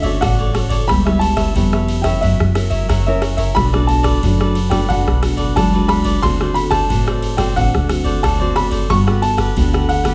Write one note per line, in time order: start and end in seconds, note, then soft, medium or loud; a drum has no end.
0.00 0.15 D2 medium
0.00 0.19 D3 medium
0.00 0.49 A3 medium
0.00 0.20 D5 medium
0.00 0.21 E5 medium
0.00 kick medium
0.00 ride soft
0.04 0.50 C#4 medium
0.04 0.50 F#4 medium
0.04 0.21 A4 medium
0.04 0.20 C#5 medium
0.21 0.79 A1 medium
0.21 0.86 A2 medium
0.21 0.37 F#4 medium
0.21 0.37 A4 medium
0.21 0.38 C#5 medium
0.21 0.37 D5 medium
0.21 0.68 F#5 medium
0.21 kick medium
0.21 cross-stick medium
0.21 ride medium
0.39 0.53 A4 medium
0.39 0.54 C#5 medium
0.39 0.54 D5 medium
0.53 0.83 A3 medium
0.53 0.83 C#4 medium
0.53 0.70 F#4 medium
0.53 0.84 F#4 medium
0.53 0.70 A4 soft
0.53 0.69 C#5 medium
0.53 0.68 D5 medium
0.53 cross-stick medium
0.53 ride medium
0.69 0.87 A4 medium
0.69 0.87 C#5 medium
0.69 0.86 D5 medium
0.69 kick medium
0.69 ride medium
0.88 1.46 C#2 medium
0.88 1.53 C#3 medium
0.88 0.99 G3 medium
0.88 0.99 B3 medium
0.88 1.00 E4 medium
0.88 1.04 G4 medium
0.88 1.04 B4 soft
0.88 1.05 C#5 medium
0.88 1.04 E5 medium
0.88 1.19 B5 medium
0.88 kick medium
0.88 cross-stick medium
0.88 ride medium
1.05 1.51 G3 medium
1.05 1.51 B3 medium
1.05 1.51 E4 medium
1.05 1.20 B4 soft
1.05 1.20 C#5 medium
1.05 1.20 E5 medium
1.05 cross-stick medium
1.19 2.00 A5 medium
1.19 muted cavaquinho stroke soft
1.19 ride medium
1.36 1.54 B4 medium
1.36 1.54 C#5 medium
1.36 1.53 E5 medium
1.36 kick medium
1.36 cross-stick medium
1.36 ride medium
1.55 2.12 F2 loud
1.55 2.19 C#3 medium
1.55 2.01 G3 medium
1.55 2.01 B3 medium
1.55 2.01 E4 medium
1.55 1.71 G4 soft
1.55 1.71 B4 medium
1.55 1.72 C#5 medium
1.55 1.72 E5 medium
1.55 kick medium
1.55 ride medium
1.73 2.04 B4 medium
1.73 2.03 C#5 medium
1.73 2.02 E5 medium
1.73 cross-stick medium
1.88 ride medium
2.02 2.50 C#4 medium
2.02 2.50 E4 medium
2.02 2.50 A#4 medium
2.02 2.21 B4 medium
2.02 2.21 C#5 medium
2.02 2.20 E5 medium
2.02 2.21 G5 medium
2.02 kick medium
2.02 cross-stick medium
2.02 ride soft
2.21 2.37 F#2 medium
2.21 2.86 F#3 medium
2.21 2.53 F#4 soft
2.21 2.54 A#4 medium
2.21 2.54 C#5 medium
2.21 3.18 E5 medium
2.21 2.54 E5 medium
2.21 kick medium
2.21 ride soft
2.40 2.82 F#2 medium
2.40 cross-stick medium
2.55 3.00 C#4 medium
2.55 3.01 E4 medium
2.55 3.01 A#4 medium
2.55 muted cavaquinho stroke soft
2.55 cross-stick medium
2.55 ride medium
2.70 2.88 A#4 medium
2.70 2.87 C#5 medium
2.70 2.87 E5 medium
2.70 kick medium
2.70 ride soft
2.89 3.46 F#2 medium
2.89 3.53 C#3 medium
2.89 3.04 F#4 medium
2.89 3.05 A#4 medium
2.89 3.05 C#5 medium
2.89 3.05 E5 medium
2.89 kick medium
2.89 cross-stick medium
2.89 ride medium
3.06 3.54 C#4 medium
3.06 3.54 E4 medium
3.06 3.21 A#4 medium
3.06 3.55 A#4 medium
3.06 3.21 C#5 medium
3.06 3.22 E5 medium
3.21 3.37 F#4 medium
3.21 3.37 A#4 medium
3.21 3.37 C#5 medium
3.21 3.36 E5 medium
3.21 cross-stick medium
3.21 ride soft
3.37 3.54 A#4 medium
3.37 3.54 C#5 medium
3.37 3.53 E5 medium
3.37 kick medium
3.37 ride soft
3.55 4.13 B1 medium
3.55 4.20 B2 medium
3.55 3.68 A3 soft
3.55 3.71 D4 soft
3.55 3.68 D4 medium
3.55 3.68 F#4 medium
3.55 3.72 A4 medium
3.55 3.72 B4 medium
3.55 3.71 D5 medium
3.55 3.62 B5 loud
3.55 kick medium
3.55 cross-stick medium
3.55 ride soft
3.73 4.18 A3 medium
3.73 4.19 D4 medium
3.73 4.19 F#4 medium
3.73 3.87 A4 medium
3.73 3.87 B4 medium
3.73 3.88 D5 medium
3.73 cross-stick medium
3.87 4.68 A5 medium
3.87 muted cavaquinho stroke soft
3.87 ride soft
4.03 4.21 A4 medium
4.03 4.20 B4 medium
4.03 4.20 D5 medium
4.03 kick medium
4.03 cross-stick medium
4.03 ride soft
4.22 4.80 F#2 medium
4.22 4.87 F#3 medium
4.22 4.55 A3 medium
4.22 4.38 D4 soft
4.22 4.55 D4 medium
4.22 4.55 F#4 medium
4.22 4.38 A4 soft
4.22 4.38 D5 medium
4.22 kick medium
4.22 ride soft
4.40 4.71 A4 medium
4.40 4.70 B4 medium
4.40 4.69 D5 medium
4.40 cross-stick medium
4.55 ride medium
4.70 4.84 A3 medium
4.70 4.84 D4 medium
4.70 4.84 F#4 medium
4.70 4.88 A4 medium
4.70 4.88 B4 medium
4.70 4.87 D5 medium
4.70 4.87 G5 medium
4.70 kick medium
4.70 cross-stick medium
4.70 ride soft
4.89 5.04 F#2 medium
4.89 5.53 B2 medium
4.89 5.10 A3 medium
4.89 5.21 D4 soft
4.89 5.10 D4 medium
4.89 5.10 F#4 medium
4.89 5.21 A4 medium
4.89 5.21 B4 medium
4.89 5.22 D5 medium
4.89 5.52 F#5 medium
4.89 kick medium
4.89 ride soft
5.07 5.49 B1 medium
5.07 cross-stick medium
5.22 5.67 A3 medium
5.22 5.68 D4 medium
5.22 5.68 F#4 medium
5.22 muted cavaquinho stroke soft
5.22 cross-stick medium
5.22 ride medium
5.37 5.55 A4 soft
5.37 5.54 B4 medium
5.37 5.54 D5 medium
5.37 kick medium
5.37 ride soft
5.56 6.13 C#2 medium
5.56 6.20 F#3 medium
5.56 5.72 D4 medium
5.56 5.72 A4 medium
5.56 5.72 B4 medium
5.56 5.72 D5 medium
5.56 5.91 A5 medium
5.56 kick medium
5.56 cross-stick medium
5.56 ride medium
5.74 6.21 A3 medium
5.74 6.21 D4 medium
5.74 6.22 F#4 medium
5.74 5.88 A4 medium
5.74 5.89 B4 medium
5.74 5.89 D5 medium
5.88 6.05 D4 medium
5.88 6.05 A4 medium
5.88 6.04 B4 medium
5.88 6.04 D5 medium
5.88 6.20 B5 medium
5.88 cross-stick medium
5.88 ride medium
6.04 6.22 A4 medium
6.04 6.21 B4 medium
6.04 6.21 D5 medium
6.04 kick medium
6.04 ride soft
6.22 6.80 D2 loud
6.22 6.87 D3 medium
6.22 6.35 A3 medium
6.22 6.35 C4 medium
6.22 6.39 F#4 soft
6.22 6.35 F#4 medium
6.22 6.39 A4 medium
6.22 6.39 C5 medium
6.22 6.39 D5 medium
6.22 6.57 C6 loud
6.22 kick medium
6.22 cross-stick medium
6.22 ride medium
6.40 6.85 A3 medium
6.40 6.85 C4 medium
6.40 6.86 F#4 medium
6.40 6.55 A4 medium
6.40 6.55 C5 medium
6.40 6.55 D5 medium
6.40 cross-stick medium
6.54 6.59 B5 medium
6.54 muted cavaquinho stroke soft
6.54 ride medium
6.70 6.88 A4 medium
6.70 6.88 C5 medium
6.70 6.87 D5 medium
6.70 7.35 A5 loud
6.70 kick medium
6.70 cross-stick medium
6.70 ride medium
6.89 7.47 A1 medium
6.89 7.54 A2 medium
6.89 7.35 A3 medium
6.89 7.35 C4 medium
6.89 7.05 F#4 soft
6.89 7.35 F#4 medium
6.89 7.05 A4 medium
6.89 7.05 C5 soft
6.89 7.05 D5 medium
6.89 kick medium
6.89 ride medium
7.06 7.38 A4 medium
7.06 7.37 C5 medium
7.06 7.36 D5 medium
7.06 cross-stick medium
7.22 ride medium
7.37 7.51 A3 medium
7.37 7.51 C4 medium
7.37 7.51 F#4 medium
7.37 7.55 A4 medium
7.37 7.55 C5 medium
7.37 7.54 D5 medium
7.37 7.56 G5 medium
7.37 kick medium
7.37 cross-stick medium
7.37 ride medium
7.56 7.71 A1 medium
7.56 8.20 D3 medium
7.56 7.76 A3 medium
7.56 7.77 C4 medium
7.56 7.88 F#4 medium
7.56 7.77 F#4 medium
7.56 7.88 A4 medium
7.56 7.88 C5 medium
7.56 7.89 D5 medium
7.56 8.19 F#5 medium
7.56 kick medium
7.56 ride medium
7.74 8.16 D2 medium
7.74 cross-stick medium
7.89 8.21 A3 medium
7.89 8.21 C4 medium
7.89 8.21 F#4 medium
7.89 muted cavaquinho stroke soft
7.89 cross-stick medium
7.89 ride medium
8.04 8.22 A4 medium
8.04 8.21 C5 medium
8.04 8.21 D5 medium
8.04 kick medium
8.04 ride soft
8.23 8.80 D2 medium
8.23 8.87 A2 medium
8.23 8.38 F#4 medium
8.23 8.39 A4 medium
8.23 8.39 C5 medium
8.23 8.38 D5 medium
8.23 8.31 A5 medium
8.23 kick medium
8.23 cross-stick medium
8.23 ride medium
8.40 8.88 A3 medium
8.40 8.88 C4 medium
8.40 8.88 F#4 medium
8.40 8.54 A4 medium
8.40 8.55 C5 medium
8.40 8.55 D5 medium
8.55 8.71 F#4 soft
8.55 8.71 A4 medium
8.55 8.71 C5 medium
8.55 8.69 D5 medium
8.55 8.63 B5 medium
8.55 cross-stick medium
8.55 ride medium
8.71 8.88 A4 medium
8.71 8.88 C5 medium
8.71 8.87 D5 medium
8.71 kick medium
8.71 ride soft
8.90 9.47 G1 loud
8.90 9.54 G3 medium
8.90 9.01 B3 medium
8.90 9.05 D4 medium
8.90 9.02 F#4 medium
8.90 9.06 G4 soft
8.90 9.02 A4 medium
8.90 9.06 B4 medium
8.90 9.06 F#5 medium
8.90 8.97 C#6 loud
8.90 kick medium
8.90 cross-stick medium
8.90 ride soft
9.07 9.52 B3 medium
9.07 9.52 F#4 medium
9.07 9.21 G4 medium
9.07 9.52 A4 medium
9.07 9.22 B4 medium
9.07 9.22 F#5 medium
9.07 cross-stick medium
9.22 9.92 A5 medium
9.22 muted cavaquinho stroke soft
9.22 ride soft
9.37 9.55 G4 medium
9.37 9.55 B4 medium
9.37 9.54 F#5 medium
9.37 kick medium
9.37 cross-stick medium
9.37 ride soft
9.56 10.14 D2 medium
9.56 10.14 D3 medium
9.56 9.88 B3 medium
9.56 9.72 D4 soft
9.56 9.88 F#4 medium
9.56 9.72 G4 medium
9.56 9.89 A4 medium
9.56 9.73 B4 medium
9.56 9.72 F#5 medium
9.56 kick medium
9.56 ride soft
9.74 10.05 G4 medium
9.74 10.04 B4 medium
9.74 10.03 F#5 medium
9.74 cross-stick medium
9.89 10.14 F#5 medium
9.89 ride soft
10.04 10.14 B3 medium
10.04 10.14 F#4 medium
10.04 10.14 G4 medium
10.04 10.14 A4 medium
10.04 10.14 B4 medium
10.04 10.14 F#5 medium
10.04 kick medium
10.04 cross-stick medium
10.04 ride soft